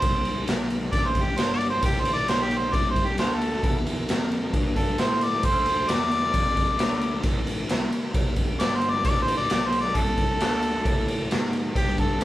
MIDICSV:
0, 0, Header, 1, 5, 480
1, 0, Start_track
1, 0, Key_signature, 0, "minor"
1, 0, Tempo, 450789
1, 35, Time_signature, 4, 2, 24, 8
1, 13034, End_track
2, 0, Start_track
2, 0, Title_t, "Harmonica"
2, 0, Program_c, 0, 22
2, 0, Note_on_c, 0, 72, 91
2, 484, Note_off_c, 0, 72, 0
2, 983, Note_on_c, 0, 74, 98
2, 1140, Note_on_c, 0, 72, 87
2, 1156, Note_off_c, 0, 74, 0
2, 1297, Note_on_c, 0, 67, 82
2, 1313, Note_off_c, 0, 72, 0
2, 1473, Note_on_c, 0, 72, 79
2, 1488, Note_off_c, 0, 67, 0
2, 1627, Note_off_c, 0, 72, 0
2, 1633, Note_on_c, 0, 74, 81
2, 1787, Note_off_c, 0, 74, 0
2, 1807, Note_on_c, 0, 72, 89
2, 1955, Note_off_c, 0, 72, 0
2, 1968, Note_on_c, 0, 67, 94
2, 2128, Note_on_c, 0, 72, 85
2, 2144, Note_off_c, 0, 67, 0
2, 2264, Note_off_c, 0, 72, 0
2, 2270, Note_on_c, 0, 74, 102
2, 2426, Note_off_c, 0, 74, 0
2, 2434, Note_on_c, 0, 72, 94
2, 2583, Note_on_c, 0, 67, 88
2, 2599, Note_off_c, 0, 72, 0
2, 2745, Note_on_c, 0, 72, 90
2, 2761, Note_off_c, 0, 67, 0
2, 2913, Note_on_c, 0, 74, 88
2, 2929, Note_off_c, 0, 72, 0
2, 3067, Note_off_c, 0, 74, 0
2, 3095, Note_on_c, 0, 72, 82
2, 3251, Note_on_c, 0, 67, 84
2, 3267, Note_off_c, 0, 72, 0
2, 3392, Note_off_c, 0, 67, 0
2, 3398, Note_on_c, 0, 72, 76
2, 3553, Note_on_c, 0, 69, 89
2, 3569, Note_off_c, 0, 72, 0
2, 4017, Note_off_c, 0, 69, 0
2, 5071, Note_on_c, 0, 69, 95
2, 5326, Note_on_c, 0, 72, 83
2, 5342, Note_off_c, 0, 69, 0
2, 5570, Note_on_c, 0, 74, 89
2, 5586, Note_off_c, 0, 72, 0
2, 5793, Note_off_c, 0, 74, 0
2, 5801, Note_on_c, 0, 72, 94
2, 6270, Note_on_c, 0, 74, 112
2, 6286, Note_off_c, 0, 72, 0
2, 7668, Note_off_c, 0, 74, 0
2, 9154, Note_on_c, 0, 74, 98
2, 9309, Note_off_c, 0, 74, 0
2, 9317, Note_on_c, 0, 72, 77
2, 9486, Note_on_c, 0, 74, 88
2, 9502, Note_off_c, 0, 72, 0
2, 9630, Note_off_c, 0, 74, 0
2, 9637, Note_on_c, 0, 74, 98
2, 9790, Note_off_c, 0, 74, 0
2, 9816, Note_on_c, 0, 72, 92
2, 9961, Note_off_c, 0, 72, 0
2, 9978, Note_on_c, 0, 74, 87
2, 10122, Note_off_c, 0, 74, 0
2, 10137, Note_on_c, 0, 74, 106
2, 10292, Note_on_c, 0, 72, 90
2, 10308, Note_off_c, 0, 74, 0
2, 10439, Note_off_c, 0, 72, 0
2, 10443, Note_on_c, 0, 74, 95
2, 10605, Note_on_c, 0, 69, 115
2, 10621, Note_off_c, 0, 74, 0
2, 12000, Note_off_c, 0, 69, 0
2, 12528, Note_on_c, 0, 67, 89
2, 12756, Note_off_c, 0, 67, 0
2, 12772, Note_on_c, 0, 69, 87
2, 12998, Note_off_c, 0, 69, 0
2, 13034, End_track
3, 0, Start_track
3, 0, Title_t, "Picked electric bass"
3, 0, Program_c, 1, 34
3, 25, Note_on_c, 1, 36, 80
3, 494, Note_off_c, 1, 36, 0
3, 502, Note_on_c, 1, 35, 91
3, 972, Note_off_c, 1, 35, 0
3, 982, Note_on_c, 1, 33, 78
3, 1452, Note_off_c, 1, 33, 0
3, 1459, Note_on_c, 1, 31, 75
3, 1930, Note_off_c, 1, 31, 0
3, 1942, Note_on_c, 1, 33, 85
3, 2411, Note_off_c, 1, 33, 0
3, 2423, Note_on_c, 1, 35, 92
3, 2892, Note_off_c, 1, 35, 0
3, 2914, Note_on_c, 1, 36, 76
3, 3377, Note_off_c, 1, 36, 0
3, 3387, Note_on_c, 1, 38, 76
3, 3854, Note_off_c, 1, 38, 0
3, 3866, Note_on_c, 1, 40, 87
3, 4333, Note_off_c, 1, 40, 0
3, 4344, Note_on_c, 1, 41, 87
3, 4812, Note_off_c, 1, 41, 0
3, 4829, Note_on_c, 1, 43, 83
3, 5295, Note_off_c, 1, 43, 0
3, 5310, Note_on_c, 1, 45, 79
3, 5775, Note_off_c, 1, 45, 0
3, 5787, Note_on_c, 1, 38, 79
3, 6254, Note_off_c, 1, 38, 0
3, 6278, Note_on_c, 1, 40, 97
3, 6740, Note_off_c, 1, 40, 0
3, 6750, Note_on_c, 1, 41, 82
3, 7216, Note_off_c, 1, 41, 0
3, 7232, Note_on_c, 1, 38, 81
3, 7697, Note_off_c, 1, 38, 0
3, 7707, Note_on_c, 1, 33, 86
3, 8175, Note_off_c, 1, 33, 0
3, 8192, Note_on_c, 1, 36, 94
3, 8415, Note_off_c, 1, 36, 0
3, 8670, Note_on_c, 1, 29, 76
3, 9137, Note_off_c, 1, 29, 0
3, 9157, Note_on_c, 1, 31, 86
3, 9621, Note_off_c, 1, 31, 0
3, 9635, Note_on_c, 1, 33, 90
3, 10100, Note_off_c, 1, 33, 0
3, 10115, Note_on_c, 1, 35, 87
3, 10581, Note_off_c, 1, 35, 0
3, 10595, Note_on_c, 1, 36, 80
3, 11061, Note_off_c, 1, 36, 0
3, 11079, Note_on_c, 1, 38, 88
3, 11544, Note_off_c, 1, 38, 0
3, 11556, Note_on_c, 1, 45, 77
3, 12023, Note_off_c, 1, 45, 0
3, 12041, Note_on_c, 1, 44, 98
3, 12506, Note_off_c, 1, 44, 0
3, 12515, Note_on_c, 1, 43, 77
3, 12983, Note_off_c, 1, 43, 0
3, 12990, Note_on_c, 1, 45, 87
3, 13034, Note_off_c, 1, 45, 0
3, 13034, End_track
4, 0, Start_track
4, 0, Title_t, "Muted picked electric bass strokes"
4, 8430, Note_on_c, 9, 29, 42
4, 8536, Note_off_c, 9, 29, 0
4, 13034, End_track
5, 0, Start_track
5, 0, Title_t, "Drums"
5, 21, Note_on_c, 9, 51, 95
5, 28, Note_on_c, 9, 36, 104
5, 127, Note_off_c, 9, 51, 0
5, 135, Note_off_c, 9, 36, 0
5, 266, Note_on_c, 9, 51, 61
5, 373, Note_off_c, 9, 51, 0
5, 506, Note_on_c, 9, 51, 82
5, 520, Note_on_c, 9, 38, 105
5, 612, Note_off_c, 9, 51, 0
5, 627, Note_off_c, 9, 38, 0
5, 747, Note_on_c, 9, 51, 68
5, 854, Note_off_c, 9, 51, 0
5, 986, Note_on_c, 9, 51, 84
5, 987, Note_on_c, 9, 36, 98
5, 1093, Note_off_c, 9, 36, 0
5, 1093, Note_off_c, 9, 51, 0
5, 1223, Note_on_c, 9, 51, 68
5, 1226, Note_on_c, 9, 36, 83
5, 1330, Note_off_c, 9, 51, 0
5, 1332, Note_off_c, 9, 36, 0
5, 1463, Note_on_c, 9, 51, 91
5, 1478, Note_on_c, 9, 38, 96
5, 1569, Note_off_c, 9, 51, 0
5, 1584, Note_off_c, 9, 38, 0
5, 1709, Note_on_c, 9, 51, 69
5, 1815, Note_off_c, 9, 51, 0
5, 1943, Note_on_c, 9, 51, 102
5, 1947, Note_on_c, 9, 36, 117
5, 2049, Note_off_c, 9, 51, 0
5, 2053, Note_off_c, 9, 36, 0
5, 2185, Note_on_c, 9, 51, 71
5, 2291, Note_off_c, 9, 51, 0
5, 2429, Note_on_c, 9, 51, 83
5, 2444, Note_on_c, 9, 38, 101
5, 2536, Note_off_c, 9, 51, 0
5, 2551, Note_off_c, 9, 38, 0
5, 2672, Note_on_c, 9, 51, 63
5, 2778, Note_off_c, 9, 51, 0
5, 2911, Note_on_c, 9, 36, 102
5, 2914, Note_on_c, 9, 51, 82
5, 3018, Note_off_c, 9, 36, 0
5, 3020, Note_off_c, 9, 51, 0
5, 3149, Note_on_c, 9, 36, 79
5, 3152, Note_on_c, 9, 51, 64
5, 3256, Note_off_c, 9, 36, 0
5, 3259, Note_off_c, 9, 51, 0
5, 3383, Note_on_c, 9, 51, 82
5, 3398, Note_on_c, 9, 38, 95
5, 3490, Note_off_c, 9, 51, 0
5, 3505, Note_off_c, 9, 38, 0
5, 3635, Note_on_c, 9, 51, 65
5, 3742, Note_off_c, 9, 51, 0
5, 3870, Note_on_c, 9, 36, 107
5, 3870, Note_on_c, 9, 51, 81
5, 3976, Note_off_c, 9, 36, 0
5, 3976, Note_off_c, 9, 51, 0
5, 4115, Note_on_c, 9, 51, 62
5, 4222, Note_off_c, 9, 51, 0
5, 4352, Note_on_c, 9, 51, 91
5, 4367, Note_on_c, 9, 38, 105
5, 4458, Note_off_c, 9, 51, 0
5, 4473, Note_off_c, 9, 38, 0
5, 4593, Note_on_c, 9, 51, 62
5, 4700, Note_off_c, 9, 51, 0
5, 4829, Note_on_c, 9, 36, 102
5, 4829, Note_on_c, 9, 51, 82
5, 4935, Note_off_c, 9, 36, 0
5, 4935, Note_off_c, 9, 51, 0
5, 5069, Note_on_c, 9, 36, 78
5, 5070, Note_on_c, 9, 51, 66
5, 5175, Note_off_c, 9, 36, 0
5, 5176, Note_off_c, 9, 51, 0
5, 5305, Note_on_c, 9, 51, 82
5, 5320, Note_on_c, 9, 38, 103
5, 5411, Note_off_c, 9, 51, 0
5, 5426, Note_off_c, 9, 38, 0
5, 5549, Note_on_c, 9, 51, 72
5, 5655, Note_off_c, 9, 51, 0
5, 5782, Note_on_c, 9, 51, 95
5, 5788, Note_on_c, 9, 36, 101
5, 5889, Note_off_c, 9, 51, 0
5, 5895, Note_off_c, 9, 36, 0
5, 6022, Note_on_c, 9, 51, 62
5, 6129, Note_off_c, 9, 51, 0
5, 6267, Note_on_c, 9, 51, 97
5, 6282, Note_on_c, 9, 38, 99
5, 6374, Note_off_c, 9, 51, 0
5, 6389, Note_off_c, 9, 38, 0
5, 6510, Note_on_c, 9, 51, 65
5, 6617, Note_off_c, 9, 51, 0
5, 6747, Note_on_c, 9, 51, 89
5, 6751, Note_on_c, 9, 36, 96
5, 6854, Note_off_c, 9, 51, 0
5, 6858, Note_off_c, 9, 36, 0
5, 6992, Note_on_c, 9, 36, 78
5, 6993, Note_on_c, 9, 51, 66
5, 7099, Note_off_c, 9, 36, 0
5, 7100, Note_off_c, 9, 51, 0
5, 7229, Note_on_c, 9, 51, 85
5, 7244, Note_on_c, 9, 38, 112
5, 7335, Note_off_c, 9, 51, 0
5, 7350, Note_off_c, 9, 38, 0
5, 7468, Note_on_c, 9, 51, 68
5, 7574, Note_off_c, 9, 51, 0
5, 7701, Note_on_c, 9, 51, 93
5, 7708, Note_on_c, 9, 36, 107
5, 7808, Note_off_c, 9, 51, 0
5, 7814, Note_off_c, 9, 36, 0
5, 7952, Note_on_c, 9, 51, 65
5, 8059, Note_off_c, 9, 51, 0
5, 8191, Note_on_c, 9, 51, 82
5, 8206, Note_on_c, 9, 38, 106
5, 8298, Note_off_c, 9, 51, 0
5, 8313, Note_off_c, 9, 38, 0
5, 8437, Note_on_c, 9, 51, 61
5, 8543, Note_off_c, 9, 51, 0
5, 8671, Note_on_c, 9, 51, 81
5, 8672, Note_on_c, 9, 36, 110
5, 8778, Note_off_c, 9, 36, 0
5, 8778, Note_off_c, 9, 51, 0
5, 8903, Note_on_c, 9, 51, 70
5, 8910, Note_on_c, 9, 36, 84
5, 9010, Note_off_c, 9, 51, 0
5, 9016, Note_off_c, 9, 36, 0
5, 9153, Note_on_c, 9, 51, 89
5, 9168, Note_on_c, 9, 38, 112
5, 9259, Note_off_c, 9, 51, 0
5, 9274, Note_off_c, 9, 38, 0
5, 9386, Note_on_c, 9, 51, 65
5, 9492, Note_off_c, 9, 51, 0
5, 9632, Note_on_c, 9, 51, 98
5, 9633, Note_on_c, 9, 36, 112
5, 9739, Note_off_c, 9, 51, 0
5, 9740, Note_off_c, 9, 36, 0
5, 9882, Note_on_c, 9, 51, 66
5, 9988, Note_off_c, 9, 51, 0
5, 10113, Note_on_c, 9, 51, 97
5, 10128, Note_on_c, 9, 38, 110
5, 10220, Note_off_c, 9, 51, 0
5, 10234, Note_off_c, 9, 38, 0
5, 10353, Note_on_c, 9, 51, 74
5, 10460, Note_off_c, 9, 51, 0
5, 10594, Note_on_c, 9, 36, 95
5, 10594, Note_on_c, 9, 51, 91
5, 10701, Note_off_c, 9, 36, 0
5, 10701, Note_off_c, 9, 51, 0
5, 10834, Note_on_c, 9, 51, 69
5, 10835, Note_on_c, 9, 36, 80
5, 10940, Note_off_c, 9, 51, 0
5, 10941, Note_off_c, 9, 36, 0
5, 11078, Note_on_c, 9, 51, 92
5, 11093, Note_on_c, 9, 38, 108
5, 11185, Note_off_c, 9, 51, 0
5, 11199, Note_off_c, 9, 38, 0
5, 11313, Note_on_c, 9, 51, 72
5, 11420, Note_off_c, 9, 51, 0
5, 11556, Note_on_c, 9, 36, 115
5, 11558, Note_on_c, 9, 51, 84
5, 11662, Note_off_c, 9, 36, 0
5, 11664, Note_off_c, 9, 51, 0
5, 11800, Note_on_c, 9, 51, 64
5, 11906, Note_off_c, 9, 51, 0
5, 12042, Note_on_c, 9, 51, 83
5, 12056, Note_on_c, 9, 38, 108
5, 12148, Note_off_c, 9, 51, 0
5, 12163, Note_off_c, 9, 38, 0
5, 12277, Note_on_c, 9, 51, 63
5, 12383, Note_off_c, 9, 51, 0
5, 12517, Note_on_c, 9, 36, 110
5, 12520, Note_on_c, 9, 51, 85
5, 12623, Note_off_c, 9, 36, 0
5, 12626, Note_off_c, 9, 51, 0
5, 12755, Note_on_c, 9, 51, 66
5, 12757, Note_on_c, 9, 36, 80
5, 12861, Note_off_c, 9, 51, 0
5, 12864, Note_off_c, 9, 36, 0
5, 12998, Note_on_c, 9, 51, 87
5, 13034, Note_off_c, 9, 51, 0
5, 13034, End_track
0, 0, End_of_file